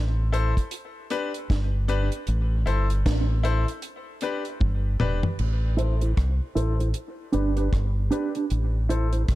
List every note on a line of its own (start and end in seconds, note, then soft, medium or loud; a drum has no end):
0.00 0.53 A1 medium
0.32 0.52 E4 medium
0.32 0.52 A4 medium
0.32 0.52 C5 loud
0.32 closed hi-hat medium
0.57 kick medium
0.57 closed hi-hat medium
0.71 closed hi-hat loud
1.10 1.30 D4 loud
1.10 1.30 G4 medium
1.10 1.30 B4 loud
1.10 closed hi-hat medium
1.34 closed hi-hat medium
1.50 2.09 G1 loud
1.50 kick loud
1.50 snare loud
1.50 closed hi-hat medium
1.88 2.08 D4 loud
1.88 2.08 G4 medium
1.88 2.08 B4 loud
1.88 closed hi-hat medium
2.12 closed hi-hat medium
2.27 2.64 A1 loud
2.27 closed hi-hat medium
2.66 3.03 G1 medium
2.66 2.85 E4 medium
2.66 2.86 A4 medium
2.66 2.86 C5 loud
2.66 closed hi-hat medium
2.90 closed hi-hat medium
3.06 3.64 A1 medium
3.06 kick loud
3.06 snare loud
3.06 closed hi-hat medium
3.43 3.63 E4 loud
3.43 3.64 A4 medium
3.43 3.64 C5 loud
3.43 closed hi-hat medium
3.68 closed hi-hat medium
3.82 closed hi-hat medium
4.21 4.41 D4 medium
4.21 4.42 G4 medium
4.21 4.42 B4 loud
4.21 closed hi-hat medium
4.45 closed hi-hat soft
4.61 4.97 G1 loud
4.61 kick loud
4.61 high tom medium
5.00 5.22 E1 medium
5.00 5.19 D4 loud
5.00 5.19 G4 medium
5.00 5.20 B4 loud
5.00 mid tom medium
5.23 5.30 G4 soft
5.23 5.30 B4 soft
5.23 floor tom medium
5.39 6.13 A1 loud
5.39 crash medium
5.77 5.94 E4 medium
5.77 5.97 E4 medium
5.77 5.94 A4 medium
5.77 5.97 A4 medium
5.77 5.95 C5 medium
5.77 5.98 C5 medium
5.77 closed hi-hat medium
6.01 6.10 E4 soft
6.01 6.10 A4 medium
6.01 6.10 C5 medium
6.01 closed hi-hat medium
6.17 6.39 C2 medium
6.17 kick loud
6.17 cross-stick loud
6.17 closed hi-hat medium
6.55 6.92 A1 medium
6.55 6.75 E4 medium
6.55 6.72 E4 medium
6.55 6.75 A4 medium
6.55 6.73 A4 medium
6.55 6.75 C5 medium
6.55 6.73 C5 medium
6.55 closed hi-hat medium
6.79 6.88 E4 medium
6.79 6.88 A4 medium
6.79 6.88 C5 medium
6.79 closed hi-hat medium
6.94 closed hi-hat medium
7.32 7.70 G1 medium
7.32 7.49 D4 medium
7.32 7.53 D4 medium
7.32 7.53 G4 medium
7.32 7.50 G4 medium
7.32 7.53 B4 medium
7.32 7.50 B4 medium
7.32 closed hi-hat medium
7.56 7.70 D4 medium
7.56 7.66 D4 soft
7.56 7.70 G4 medium
7.56 7.66 G4 soft
7.56 7.65 B4 soft
7.56 7.70 B4 medium
7.56 closed hi-hat medium
7.73 8.09 G1 medium
7.73 kick loud
7.73 cross-stick loud
7.73 closed hi-hat medium
8.11 8.28 D4 medium
8.11 8.31 D4 medium
8.11 8.28 G4 medium
8.11 8.31 G4 medium
8.11 8.28 B4 medium
8.11 8.31 B4 loud
8.11 closed hi-hat medium
8.35 8.44 D4 soft
8.35 8.44 G4 soft
8.35 8.44 B4 soft
8.35 closed hi-hat soft
8.50 9.25 A1 medium
8.50 closed hi-hat medium
8.89 9.09 E4 medium
8.89 9.06 E4 medium
8.89 9.09 A4 medium
8.89 9.06 A4 medium
8.89 9.09 C5 medium
8.89 9.07 C5 medium
8.89 closed hi-hat medium
9.13 9.22 E4 soft
9.13 9.22 A4 medium
9.13 9.21 C5 medium
9.13 closed hi-hat medium
9.28 9.35 B1 medium
9.28 kick medium
9.28 cross-stick loud
9.28 closed hi-hat medium